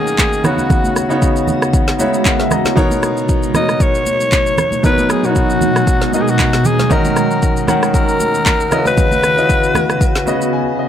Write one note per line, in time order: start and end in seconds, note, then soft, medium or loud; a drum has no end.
0.00 0.46 D#3 loud
0.00 0.46 A#3 medium
0.00 0.46 C#4 medium
0.00 0.45 F#4 medium
0.00 2.73 F#4 loud
0.00 0.47 G#4 loud
0.00 0.46 D#5 loud
0.07 shaker medium
0.18 kick medium
0.18 clap medium
0.18 high conga medium
0.18 shaker medium
0.33 shaker medium
0.43 0.95 C#3 medium
0.43 2.75 C#3 medium
0.43 2.75 G#3 medium
0.43 0.96 B3 medium
0.43 2.75 B3 medium
0.43 0.96 D#4 medium
0.43 0.96 F#4 medium
0.43 1.22 F#4 medium
0.43 0.97 C#5 medium
0.43 cross-stick medium
0.43 low conga medium
0.43 shaker medium
0.58 high conga medium
0.58 shaker medium
0.70 kick loud
0.70 low conga medium
0.70 shaker medium
0.84 high conga medium
0.84 shaker medium
0.96 cross-stick medium
0.96 shaker medium
1.09 1.81 C#3 medium
1.09 1.82 B3 medium
1.09 1.82 D#4 medium
1.09 1.82 F#4 medium
1.09 1.83 C#5 medium
1.09 shaker medium
1.22 kick medium
1.22 shaker medium
1.36 shaker medium
1.48 high conga medium
1.48 low conga medium
1.48 shaker medium
1.62 cross-stick loud
1.62 shaker soft
1.73 kick loud
1.73 shaker medium
1.88 snare medium
1.88 shaker soft
1.98 2.62 C#3 medium
1.98 2.62 B3 medium
1.98 2.25 D#4 medium
1.98 2.26 F#4 medium
1.98 2.26 C#5 medium
1.98 2.23 E5 medium
1.98 high conga medium
1.98 shaker loud
2.14 shaker medium
2.25 2.39 A#4 medium
2.25 2.39 F#5 medium
2.25 kick medium
2.25 clap medium
2.25 high conga medium
2.25 shaker medium
2.39 2.51 G#4 medium
2.39 2.51 E5 medium
2.39 snare medium
2.39 shaker medium
2.51 2.65 F#4 medium
2.51 2.64 D#5 medium
2.51 2.75 A#5 medium
2.51 cross-stick medium
2.51 low conga medium
2.51 shaker medium
2.65 2.90 E4 medium
2.65 2.76 C#5 medium
2.65 snare medium
2.65 high conga medium
2.65 shaker medium
2.75 3.39 B2 loud
2.75 6.87 B2 medium
2.75 6.87 F#3 medium
2.75 3.40 B3 loud
2.75 3.40 D#4 loud
2.75 6.87 D#4 loud
2.75 4.82 A#4 medium
2.75 3.40 A#4 loud
2.75 3.40 C#5 loud
2.75 kick loud
2.75 low conga medium
2.75 shaker medium
2.91 high conga medium
2.91 shaker medium
3.03 cross-stick loud
3.03 shaker medium
3.17 shaker medium
3.29 kick medium
3.29 shaker medium
3.43 shaker medium
3.53 4.37 B2 medium
3.53 4.38 B3 medium
3.53 4.38 D#4 medium
3.53 4.38 A#4 medium
3.53 4.38 C#5 medium
3.53 3.83 D#5 loud
3.53 cross-stick loud
3.53 high conga medium
3.53 low conga medium
3.53 shaker medium
3.69 cross-stick medium
3.69 shaker soft
3.80 4.85 C#5 loud
3.80 kick loud
3.80 shaker medium
3.95 shaker soft
4.06 high conga medium
4.06 shaker loud
4.20 shaker medium
4.32 kick medium
4.32 clap loud
4.32 high conga medium
4.32 shaker medium
4.46 shaker medium
4.58 cross-stick loud
4.58 low conga medium
4.58 shaker medium
4.72 high conga medium
4.72 shaker medium
4.83 5.15 B2 loud
4.83 6.89 G#3 medium
4.83 5.15 B3 medium
4.83 5.15 D#4 medium
4.83 5.16 A#4 medium
4.83 5.13 B4 loud
4.83 5.16 C#5 loud
4.83 kick loud
4.83 low conga medium
4.83 shaker medium
4.98 high conga medium
4.98 shaker medium
5.10 5.27 G#4 medium
5.10 cross-stick loud
5.10 shaker medium
5.23 5.95 B2 medium
5.23 5.96 B3 medium
5.23 5.30 C#4 medium
5.23 6.14 F#4 medium
5.23 5.96 A#4 medium
5.23 5.96 C#5 medium
5.23 shaker soft
5.30 5.99 D#4 medium
5.35 kick medium
5.35 shaker medium
5.50 shaker medium
5.61 high conga medium
5.61 low conga medium
5.61 shaker medium
5.76 cross-stick loud
5.76 shaker soft
5.87 kick loud
5.87 shaker medium
6.02 snare medium
6.02 shaker soft
6.12 6.76 B2 medium
6.12 6.76 B3 medium
6.12 6.76 D#4 medium
6.12 6.23 F#4 medium
6.12 6.77 A#4 medium
6.12 6.77 D#5 medium
6.12 high conga medium
6.12 shaker loud
6.22 6.31 G#4 medium
6.28 6.68 F#4 loud
6.28 shaker medium
6.39 kick medium
6.39 clap medium
6.39 high conga medium
6.39 shaker medium
6.53 snare medium
6.53 shaker medium
6.65 6.94 G#4 medium
6.65 low conga medium
6.65 shaker medium
6.79 snare medium
6.79 high conga medium
6.79 shaker medium
6.90 7.53 D#3 loud
6.90 7.54 C#4 medium
6.90 7.54 F#4 medium
6.90 10.89 F#4 loud
6.90 7.54 A#4 medium
6.90 7.68 A#4 medium
6.90 7.54 D#5 loud
6.90 kick loud
6.90 low conga medium
6.90 shaker medium
7.05 high conga medium
7.05 shaker medium
7.16 cross-stick medium
7.16 shaker medium
7.31 shaker soft
7.42 kick loud
7.42 shaker medium
7.57 shaker medium
7.67 8.51 D#3 medium
7.67 8.51 C#4 medium
7.67 8.52 F#4 medium
7.67 8.52 A#4 medium
7.67 8.52 F#5 loud
7.67 cross-stick medium
7.67 high conga medium
7.67 low conga medium
7.67 shaker medium
7.83 cross-stick loud
7.83 shaker soft
7.94 8.83 A#4 loud
7.94 kick loud
7.94 shaker medium
8.09 shaker soft
8.20 high conga medium
8.20 shaker loud
8.34 shaker medium
8.46 kick medium
8.46 clap medium
8.46 high conga medium
8.46 shaker medium
8.60 shaker medium
8.70 10.89 C#2 medium
8.70 9.23 C#3 medium
8.70 10.89 C#3 medium
8.70 10.89 B3 medium
8.70 9.23 C#4 medium
8.70 8.79 E4 medium
8.70 9.24 B4 medium
8.70 9.24 D#5 medium
8.70 cross-stick medium
8.70 low conga medium
8.70 shaker medium
8.78 9.27 F#4 medium
8.86 10.49 B4 loud
8.86 high conga medium
8.86 shaker medium
8.97 kick loud
8.97 low conga medium
8.97 shaker medium
9.12 high conga medium
9.12 shaker medium
9.23 cross-stick medium
9.23 shaker medium
9.37 10.09 C#3 medium
9.37 10.09 C#4 medium
9.37 9.43 E4 medium
9.37 10.10 B4 medium
9.37 10.10 D#5 medium
9.37 shaker soft
9.44 10.13 F#4 medium
9.49 kick medium
9.49 shaker medium
9.63 shaker medium
9.75 cross-stick loud
9.75 high conga medium
9.75 low conga medium
9.75 shaker medium
9.90 cross-stick loud
9.90 shaker soft
10.01 kick loud
10.01 shaker medium
10.15 snare medium
10.15 shaker soft
10.26 10.89 C#3 medium
10.26 10.89 C#4 medium
10.26 10.89 F#4 medium
10.26 10.89 B4 medium
10.26 10.78 D#5 medium
10.26 high conga medium
10.26 shaker loud
10.42 shaker medium
10.53 10.77 G#5 medium
10.79 10.89 D#5 medium